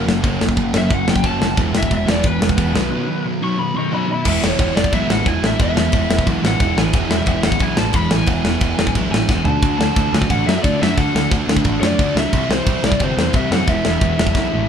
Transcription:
0.05 F#1 F#2 C#3 F#3 A#3, snare
0.22 F#1 F#2 C#3 F#3 A#3 C#4, kick, crash
0.40 F#1 F#2 C#3 F#3 A#3, snare
0.49 kick
0.57 F#1 F#2 C#3 F#3 A#3, kick, crash
0.74 F#1 F#2 C#3 F#3 A#3 C#4 E5, snare
0.90 F#1 F#2 C#3 F#3 A#3 F#5, kick, crash
1.07 F#1 F#2 C#3 F#3 A#3 G5, snare
1.16 kick
1.22 F#1 F#2 C#3 F#3 A#3 C#4 A5, kick, crash
1.40 F#1 F#2 C#3 F#3 A#3, snare
1.55 E1 E2 B2 E3 G#3 B3, kick, crash
1.72 E1 B2 E3 G#3, snare
1.76 E2 E5
1.83 kick
1.89 E1 E2 B2 E3 G#3, kick, crash
1.95 E5
2.06 E1 E2 B2 E3 G#3 B3, snare
2.10 D5
2.23 E1 E2 B2 E3 G#3, kick, crash
2.27 B4
2.40 E1 E2 B2 E3 G#3, snare
2.49 kick
2.56 E1 E2 B2 E3 G#3 B3, kick, crash
2.73 B1 B2 D#3 F#3 B3, snare
2.91 B2 D#3 F#3 B3
3.08 B2 D#3 F#3 B3
3.25 B2 D#3 F#3 B3
3.42 B2 D#3 F#3 B3 C#6
3.58 B2 D#3 F#3 B3 B5
3.74 B2 D#3 F#3 B3 C#6
3.78 D#5
3.91 B2 D#3 F#3 B3 D#5 B5
4.07 B2 D#3 F#3 B3
4.12 E5 B5
4.24 E1 E2 B2 E3 G#3 B3 E4, kick, crash
4.41 E1 E3 G#3 B3 E4, snare
4.46 C#5
4.58 E1 E3 G#3 B3 E4, kick, crash
4.75 E1 E3 G#3 B3 E4 D5, snare
4.84 kick
4.92 B1 E2 B2 E3 G#3 B3 E4 E5, kick, crash
5.09 A1 E3 G#3 B3 E4 F#5, snare
5.25 E1 E3 G#3 B3 E4 G#5, kick, crash
5.42 A1 E3 G#3 B3 E4, snare
5.46 E5
5.58 E1 E2 B2 E3 G#3 B3 E4 E5, kick, crash
5.63 E3
5.76 E1 E3 G#3 B3 E4, snare
5.92 E1 E3 G#3 B3 E4, kick, crash
6.10 E1 E3 G#3 B3 E4, snare
6.19 kick
6.26 B1 E2 B2 E3 G#3 B3 E4, kick, crash
6.31 E3
6.42 A1 E3 G#3 B3 E4, snare
6.47 F#5
6.60 E1 E3 G#3 B3 E4, kick, crash
6.76 A1 E3 G#3 B3 E4 G#5, snare
6.93 E1 E2 B2 E3 G#3 B3 E4, kick, crash
7.09 E1 E3 G#3 B3 E4 E5, snare
7.26 E1 E3 G#3 B3 E4, kick, crash
7.43 E1 E3 G#3 B3 E4 F#5, snare
7.52 kick
7.59 B1 E2 B2 E3 G#3 B3 E4 G#5, kick, crash
7.77 A1 E3 G#3 B3 E4 A5, snare
7.93 E1 E3 G#3 B3 E4 B5, kick, crash
8.11 A1 E3 G#3 B3 E4 G#5, snare
8.26 E1 E2 B2 E3 G#3 B3 E4 G#5, kick, crash
8.31 E3
8.44 E1 E3 G#3 B3 E4, snare
8.61 E1 E3 G#3 B3 E4, kick, crash
8.77 E1 E3 G#3 B3 E4, snare
8.87 kick
8.95 B1 E2 B2 E3 G#3 B3 E4, kick, crash
9.11 A1 E3 G#3 B3 E4 G#5, snare
9.28 E1 E3 G#3 B3 E4, kick, snare
9.44 D2 D3 A3 D4 F#4 A5, floor tom
9.49 D4
9.61 D2 D3 A3 D4 F#4, kick, crash
9.78 D2 D3 A3 D4 F#4 A5, snare
9.96 D2 D3 A3 D4 F#4, kick, crash
10.13 D2 D3 A3 D4 F#4 G#5, snare
10.22 kick
10.29 A1 D3 A3 D4 F#4 F#5, kick, crash
10.46 F#2 D3 A3 D4 F#4 E5, snare
10.63 D2 D3 A3 D4 F#4 D5, kick, crash
10.80 F#2 D3 A3 D4 F#4 E5, snare
10.96 D2 D3 A3 D4 F#4 F#5, kick, crash
11.14 D2 D3 A3 D4 F#4, snare
11.31 D2 D3 A3 D4 F#4, kick, crash
11.47 D2 D3 A3 D4 F#4, snare
11.57 kick
11.64 A1 D3 A3 D4 F#4, kick, crash
11.81 F#2 D3 A3 D4 F#4 D5, snare
11.99 D2 D3 A3 D4 F#4, kick, crash
12.15 C#2 D3 A3 D4 F#4 E5, snare
12.31 C2 C3 E3 G3 C4 E4, kick, crash
12.49 C2 C3 E3 G3 C4 E4 C5, snare
12.66 C2 C3 E3 G3 C4 E4, kick, crash
12.82 C2 C3 E3 G3 C4 E4, snare
12.87 D5
12.92 kick
12.99 G1 C3 E3 G3 C4 E4 C5, kick, crash
13.17 E2 C3 E3 G3 C4 E4, snare
13.33 C2 C3 E3 G3 C4 E4 E5, kick, crash
13.50 F#2 C3 E3 G3 C4 E4 F#5, snare
13.67 E1 E2 B2 E3 G#3 B3 E4 E5, kick, crash
13.85 E1 E3 G#3 B3 E4, snare
14.01 E1 E3 G#3 B3 E4, kick, crash
14.18 E1 E3 G#3 B3 E4, snare
14.27 kick
14.34 B1 E2 B2 E3 G#3 B3 E4, kick, snare
14.52 A1 E3 G#3 B3 E4

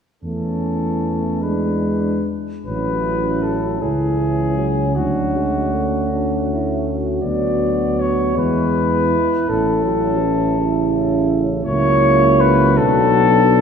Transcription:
0.23 E2 E3 A3 C#4 A4
1.42 G#3 D4 B4
2.64 A1 F#3 C#4 E4 B4
3.42 A4
3.80 C#2 E3 C#4 E4 G#4
4.19 E3
4.59 F#3
4.95 D2 F#3 D4 F#4
5.36 G#3
5.73 A3
6.10 D4
6.52 E4
6.90 F#4
7.22 D2 F#3 B3 D5
7.27 F#4
7.99 C#5
8.36 E2 G#3 E4 B4
9.46 A1 A3 C#4 A4
9.50 E4
9.84 F#3
10.19 E3
10.55 C#3 C#4
10.60 E4
11.65 C#2 F#3 A#3 E4 C#5
12.40 B4
12.77 B1 B3 D4 A4

